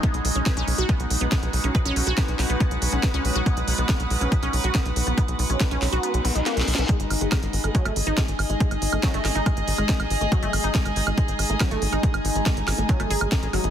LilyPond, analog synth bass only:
\new Staff \with { instrumentName = "Analog synth bass" } { \clef bass \time 4/4 \key gis \minor \tempo 4 = 140 r16 b,,16 b,,16 b,,16 r16 b,,16 b,,16 b,,16 r16 b,,16 b,,16 b,,16 r16 b,,16 b,,16 b,,16 | r16 b,,16 b,,16 b,,16 r16 b,,16 b,,16 b,,16 r16 b,,16 b,,16 b,,16 r16 cis,16 b,,16 b,,16 | r16 b,,16 b,,16 b,,16 r16 b,,16 b,,16 b,,16 r16 b,,16 b,,16 b,,16 r16 b,,16 b,,16 b,,16 | r16 b,,16 b,,16 b,,16 r16 b,,16 b,,16 b,,16 r16 b,,16 b,,16 b,,16 r16 b,,16 b,,16 b,,16 |
r16 gis,,16 gis,,16 gis,,16 r16 gis,,16 gis,,16 gis,,16 r16 gis,,16 gis,,16 gis,,16 r16 gis,,16 gis,,16 gis,,16 | r16 gis,,16 gis,,16 gis,,16 r16 gis,,16 gis,,16 gis,,16 r16 gis,,16 gis,,16 gis,,16 r16 a,,16 gis,,16 gis,,16 | r16 gis,,16 gis,,16 gis,,16 r16 gis,,16 gis,,16 gis,,16 r16 gis,,16 gis,,16 gis,,16 r16 gis,,16 gis,,16 gis,,16 | r16 gis,,16 gis,,16 gis,,16 r16 gis,,16 gis,,16 gis,,16 r16 gis,,16 gis,,16 gis,,16 r16 a,,16 gis,,16 gis,,16 | }